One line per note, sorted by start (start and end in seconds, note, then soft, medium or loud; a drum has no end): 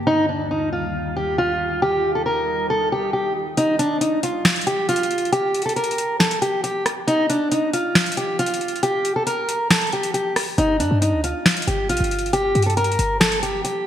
0.07 3.54 D#2 medium
0.07 3.54 D#3 medium
0.07 3.54 G3 medium
0.07 0.26 D#4 loud
0.07 1.80 F4 medium
0.29 0.48 D4 medium
0.51 0.70 D#4 medium
0.73 1.14 F4 medium
1.16 1.36 G4 medium
1.38 1.80 F4 medium
1.82 3.56 D#4 medium
1.82 2.13 G4 medium
2.15 2.25 A4 medium
2.26 2.67 A#4 medium
2.70 2.89 A4 medium
2.92 3.11 G4 medium
3.13 3.33 G4 medium
3.57 3.77 D#4 loud
3.57 closed hi-hat medium
3.79 3.98 D4 medium
3.79 closed hi-hat medium
4.01 4.20 D#4 medium
4.01 closed hi-hat medium
4.23 4.64 F4 medium
4.23 closed hi-hat medium
4.45 snare loud
4.45 closed hi-hat soft
4.50 closed hi-hat medium
4.56 closed hi-hat medium
4.61 closed hi-hat medium
4.67 4.86 G4 medium
4.67 closed hi-hat medium
4.89 5.30 F4 medium
4.89 closed hi-hat medium
4.96 closed hi-hat medium
5.03 closed hi-hat medium
5.11 closed hi-hat medium
5.18 closed hi-hat soft
5.25 closed hi-hat soft
5.32 5.63 G4 loud
5.32 closed hi-hat medium
5.54 closed hi-hat medium
5.62 5.75 A4 medium
5.62 closed hi-hat medium
5.69 closed hi-hat medium
5.76 6.17 A#4 medium
5.76 closed hi-hat medium
5.84 closed hi-hat medium
5.91 closed hi-hat medium
5.98 closed hi-hat medium
6.20 6.39 A4 medium
6.20 snare loud
6.20 closed hi-hat soft
6.31 closed hi-hat medium
6.42 6.61 G4 medium
6.42 closed hi-hat medium
6.64 6.83 G4 medium
6.64 closed hi-hat medium
6.86 cross-stick medium
6.86 closed hi-hat medium
7.07 7.27 D#4 loud
7.07 closed hi-hat medium
7.30 7.49 D4 medium
7.30 closed hi-hat medium
7.52 7.71 D#4 medium
7.52 closed hi-hat medium
7.73 8.15 F4 medium
7.73 closed hi-hat medium
7.95 snare loud
7.95 closed hi-hat soft
8.01 closed hi-hat medium
8.06 closed hi-hat medium
8.12 closed hi-hat medium
8.17 8.36 G4 medium
8.17 closed hi-hat medium
8.39 8.80 F4 loud
8.39 closed hi-hat medium
8.46 closed hi-hat medium
8.54 closed hi-hat medium
8.61 closed hi-hat medium
8.68 closed hi-hat soft
8.76 closed hi-hat soft
8.83 9.14 G4 loud
8.83 closed hi-hat medium
9.05 closed hi-hat medium
9.16 9.25 A4 medium
9.27 9.68 A#4 medium
9.27 closed hi-hat medium
9.49 closed hi-hat medium
9.71 9.90 A4 medium
9.71 snare loud
9.71 closed hi-hat medium
9.76 closed hi-hat medium
9.81 closed hi-hat medium
9.87 closed hi-hat soft
9.92 10.12 G4 medium
9.92 closed hi-hat soft
10.03 closed hi-hat medium
10.14 10.33 G4 medium
10.14 closed hi-hat medium
10.36 cross-stick medium
10.36 open hi-hat medium
10.58 10.82 G1 loud
10.58 10.77 D#4 loud
10.58 closed hi-hat medium
10.80 10.90 G2 loud
10.80 10.99 D4 medium
10.80 closed hi-hat medium
10.91 11.14 G2 loud
11.02 11.21 D#4 medium
11.02 closed hi-hat medium
11.13 11.34 D2 loud
11.24 11.65 F4 medium
11.24 closed hi-hat medium
11.46 snare loud
11.46 closed hi-hat soft
11.51 closed hi-hat medium
11.57 closed hi-hat medium
11.62 closed hi-hat medium
11.67 11.91 G1 loud
11.67 11.87 G4 medium
11.67 closed hi-hat medium
11.89 12.00 A#1 loud
11.89 12.31 F4 medium
11.89 closed hi-hat medium
11.97 12.53 G1 loud
11.97 closed hi-hat medium
12.04 closed hi-hat medium
12.11 closed hi-hat medium
12.19 closed hi-hat soft
12.26 closed hi-hat soft
12.33 12.64 G4 loud
12.33 closed hi-hat medium
12.55 12.97 G2 loud
12.55 closed hi-hat medium
12.62 12.76 A4 medium
12.62 closed hi-hat medium
12.70 closed hi-hat medium
12.77 13.18 A#4 medium
12.77 closed hi-hat medium
12.84 closed hi-hat medium
12.92 closed hi-hat medium
12.99 13.62 G1 loud
12.99 closed hi-hat medium
13.20 13.40 A4 medium
13.20 snare loud
13.20 closed hi-hat soft
13.32 closed hi-hat medium
13.43 13.62 G4 medium
13.43 closed hi-hat medium
13.64 13.84 G4 medium
13.64 closed hi-hat medium